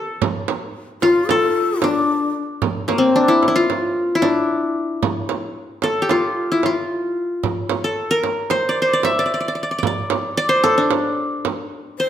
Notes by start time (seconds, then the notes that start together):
Already playing: A4
0.22 frame drum
0.48 frame drum
1.02 F4, frame drum
1.27 A4, frame drum
1.81 D4, frame drum
2.62 frame drum
2.88 A#3, frame drum
2.98 C4
3.16 D4
3.28 E4
3.43 frame drum
3.48 E4
3.56 F4
3.70 frame drum
4.15 E4
4.22 D4, frame drum
5.03 frame drum
5.29 frame drum
5.82 A4, frame drum
6.02 G4
6.09 F4, frame drum
6.52 E4
6.63 F4, frame drum
7.43 frame drum
7.70 frame drum
7.84 A4
8.11 A#4
8.24 frame drum
8.50 C5, frame drum
8.69 D5
8.82 C5
8.93 D5
9.03 E5, frame drum
9.19 D5
9.26 D5
9.34 D5
9.40 D5
9.48 D5
9.55 D5
9.63 D5
9.71 D5
9.78 D5
9.83 D5, frame drum
10.10 frame drum
10.37 D5
10.49 C5
10.64 A4, frame drum
10.78 D4
10.91 frame drum
11.45 frame drum
11.99 C5